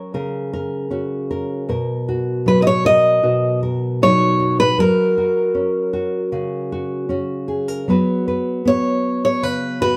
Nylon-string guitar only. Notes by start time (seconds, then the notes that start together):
Already playing: F#3 C#4 F#4 A#4
0.14 C#3 A#4
0.53 A#4
0.90 C#4 F#4
1.31 A#4
1.69 B2 A#4
2.09 F#4
2.46 F#3
2.85 A#4
3.23 B2 F#4
3.63 A#4
4.02 F#3 D#4
4.40 F#4
4.78 F#3 F#4
5.18 F#4
5.55 C#4
5.93 F#4
6.32 C#3 F#4
6.72 F#4
7.09 C#4 F#4
7.48 G#4
7.68 A#4
7.88 F#3 B3 F#4 B4
8.28 B4
8.65 B3
9.43 C#3
9.81 F#4